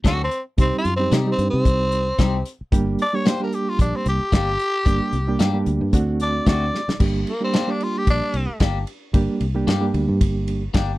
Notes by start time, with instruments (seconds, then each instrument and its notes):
0.04 fingered electric bass D2, clean electric guitar F#3 C4 D4 A4, tenor saxophone F#4, kick, snare, closed hi-hat
0.24 tenor saxophone C4
0.31 closed hi-hat
0.57 fingered electric bass C2, reed electric piano G3 C4 D#4 G4, tenor saxophone C4, kick, closed hi-hat
0.78 tenor saxophone F4
0.85 fingered electric bass F#2, closed hi-hat
0.96 reed electric piano G3 C4 D#4 G4, tenor saxophone C4
1.11 fingered electric bass C3, clean electric guitar G3 C4 D#4 G4, snare, closed hi-hat
1.26 reed electric piano G3 C4 D#4 G4
1.32 tenor saxophone C4
1.38 fingered electric bass G2, closed hi-hat
1.50 fingered electric bass C3, tenor saxophone C4
1.65 fingered electric bass C2, kick, closed hi-hat
1.92 closed hi-hat
2.19 fingered electric bass C2, clean electric guitar G3 C4 D#4 G4, kick, snare, closed hi-hat
2.46 closed hi-hat
2.61 muted fingered electric bass stroke
2.72 fingered electric bass G1, reed electric piano G3 A#3 D4 G4, kick, closed hi-hat
2.99 tenor saxophone D5, closed hi-hat
3.13 reed electric piano G3 A#3 D4 G4, tenor saxophone C#5
3.25 clean electric guitar A#3 D4 G4, tenor saxophone C5, snare, closed hi-hat
3.40 reed electric piano G3 A#3 D4 G4
3.44 tenor saxophone A#4
3.52 tenor saxophone G4, closed hi-hat
3.69 tenor saxophone F4
3.79 fingered electric bass A#1, tenor saxophone D4, kick, closed hi-hat
3.96 tenor saxophone C4
4.06 fingered electric bass C2, tenor saxophone G4, closed hi-hat
4.32 fingered electric bass G1, clean electric guitar A#3 D4 G4, kick, snare, closed hi-hat
4.59 closed hi-hat
4.85 fingered electric bass G1, reed electric piano G3 A#3 D4 G4, kick, closed hi-hat
5.12 fingered electric bass C2, closed hi-hat
5.27 reed electric piano G3 A#3 D4 G4
5.39 fingered electric bass G2, clean electric guitar A#3 D4 G4, snare, closed hi-hat
5.53 reed electric piano G3 A#3 D4 G4
5.66 fingered electric bass D2, closed hi-hat
5.81 fingered electric bass G2
5.93 fingered electric bass D2, reed electric piano A3 C4 D4 F#4, kick, closed hi-hat
6.20 tenor saxophone D5, closed hi-hat
6.46 fingered electric bass D2, clean electric guitar A3 C4 F#4, tenor saxophone D5, kick, snare, closed hi-hat
6.74 snare
6.88 muted fingered electric bass stroke, snare
6.99 fingered electric bass G1, reed electric piano G3 A#3 D4 G4, kick, crash
7.27 tenor saxophone A#3, ride
7.40 reed electric piano G3 A#3 D4 G4
7.44 tenor saxophone C4
7.54 clean electric guitar A#3 D4 G4, snare, ride
7.67 reed electric piano G3 A#3 D4 G4, tenor saxophone D4
7.80 tenor saxophone F4, ride
7.98 tenor saxophone G4
8.07 fingered electric bass A#1, tenor saxophone D4, kick, ride
8.34 fingered electric bass C2, ride
8.60 fingered electric bass G1, clean electric guitar A#3 D4 G4, kick, snare, ride
8.87 ride
9.13 fingered electric bass G1, reed electric piano G3 A#3 D4 G4, kick, ride
9.41 fingered electric bass C2, ride
9.54 reed electric piano G3 A#3 D4 G4
9.67 fingered electric bass G2, clean electric guitar A#3 D4 G4, snare, ride
9.81 reed electric piano G3 A#3 D4 G4
9.94 fingered electric bass D2, ride
10.09 fingered electric bass G2
10.21 fingered electric bass G1, kick, ride
10.48 ride
10.74 fingered electric bass G1, clean electric guitar A#3 D4 G4, kick, snare, ride